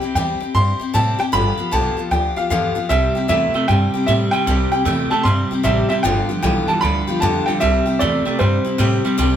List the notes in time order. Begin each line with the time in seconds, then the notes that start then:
Already playing: G5
0.01 C4 E4 G4, muted upright bass stroke
0.15 E2 C3 G3 C4 E4 G4 G5
0.40 C4 E4 G4, muted upright bass stroke
0.54 G2 G3 C4 E4 G4 C6
0.80 C4 E4 G4, muted upright bass stroke
0.94 A2 C3 G3 C4 E4 G4 A5
1.19 C4 E4 G4 G5, muted upright bass stroke
1.32 G1 G2 D3 F3 B3 F4 G4 B5
1.57 F3 B3 F4 G4, muted upright bass stroke
1.71 B1 G2 D3 F3 B3 F4 G4 A5
1.97 F3 B3 F4 G4, muted upright bass stroke
2.11 D2 F3 B3 F4 G4 G5
2.36 F3 B3 F4 G4 F5, muted upright bass stroke
2.50 E2 G2 D3 F3 B3 F4 G4 F5
2.75 F3 B3 F4 G4, muted upright bass stroke
2.89 C2 C3 G3 C4 E4 G4 E5
3.15 C4 E4 G4
3.28 E2 C3 G3 A3 C4 E4 G4 E5
3.54 C3 A3 C4 E4 G4, muted upright bass stroke
3.68 G2 C3 G3 C4 E4 G4 G5
3.94 C4 E4 G4, muted upright bass stroke
4.06 A2 C3 G3 C4 E4 G4 E5
4.31 C3 G3 C4 E4 G4 G5, muted upright bass stroke
4.47 C2 C3 G3 C4 E4 G4
4.72 C4 E4 G4 G5
4.85 E2 C3 G3 A3 C4 E4 G4
5.10 C3 A3 C4 E4 G4 A5, muted upright bass stroke
5.23 G2 C3 G3 C4 E4 C6
5.28 G4
5.51 C4 E4 G4, muted upright bass stroke
5.63 A1 C3 G3 C4 E4 G4 E5
5.89 C3 G3 C4 E4 G4 E5
6.03 G1 G2 D3 F3 B3 F4 G4 G5
6.29 F3 B3 F4 G4
6.42 B1 G2 D3 E3 F3 B3 F4 G4 G5
6.67 G2 E3 F3 B3 F4 G4 A5, muted upright bass stroke
6.81 D2 G2 D3 F3 B3 F4 G4 B5
7.07 F3 B3 F4 G4
7.20 F2 G2 D3 F3 B3 F4 G4 A5
7.46 G2 D3 B3 F4 G4 G5, muted upright bass stroke
7.50 F3
7.60 C2 C3 G3 C4 E4 G4 E5
7.86 C4 E4 G4
7.99 E2 C3 G3 A3 C4 E4 G4 D5
8.25 C3 A3 C4 E4 G4, muted upright bass stroke
8.39 G2 C3 G3 C4 E4 G4 C5
8.65 C4 E4 G4, muted upright bass stroke
8.78 A2 C3 G3 C4 E4 G4
9.05 C3 G3 C4 E4 G4, muted upright bass stroke
9.18 C2 C3 G3 C4 E4 G4